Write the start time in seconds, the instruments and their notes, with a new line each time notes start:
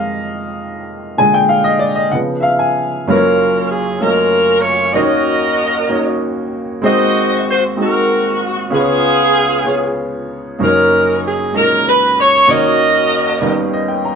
Already playing: grand piano F2 D#3 G#3 D#5 F5
1.18 grand piano A#2 D3 G#3 G#5
1.34 grand piano G5
1.49 grand piano F5
1.64 grand piano D#5
1.79 grand piano D5
1.96 grand piano D#5
2.12 grand piano C#3 F3 B3 F#5
2.40 grand piano E5 F5
2.59 grand piano G#5
3.07 grand piano F#1 F#2 F#3 A#3 C#4 F4 B4, saxophone section C#4 F4 A#4
3.15 grand piano C#5
3.70 saxophone section G#4
4.00 grand piano F#3 A3 C#4 F4 D#5, saxophone section F4 A#4
4.04 grand piano A#3, saxophone section C#4
4.62 saxophone section C#5
4.93 grand piano D#2 D#3 A#3 C#4 D#4 F#4 C5, saxophone section F#4 A#4 D#5
5.02 grand piano C#5
5.89 grand piano A#3 C#4 D#4 F#4 C#5
6.82 grand piano D#2 D#3 G#3 C4 D#4 F#4 C5, saxophone section F#4 C5 D#5
7.50 saxophone section C5
7.76 grand piano G#3 C4 D#4 F#4 D#5
7.81 saxophone section F#4 A#4
8.70 grand piano C#2 C#3 B3 C#4 F4 G#4 B4, saxophone section B3 F4 G#4
8.79 grand piano C#5
9.64 grand piano B3 C#4 F4 G#4 C#5
10.59 grand piano F#1 F#2 A#3 C#4 D#4 F#4 C5, saxophone section C#4 D#4
10.63 saxophone section A#4
10.67 grand piano C#5
11.27 saxophone section G#4
11.52 grand piano G#3 C#4 D#4 F#4 D#5
11.57 grand piano A#2, saxophone section A#4
11.89 saxophone section B4
12.20 saxophone section C#5
12.46 grand piano D#2 D#3 A#3 C#4 D#4 F#4 C5, saxophone section D#5
12.51 saxophone section F#4 A#4
12.55 grand piano C#5
13.41 grand piano D#2 D#3 G3 B3 C#4 D#4 A#4
13.73 grand piano D#5
13.88 grand piano G5
14.05 grand piano A#5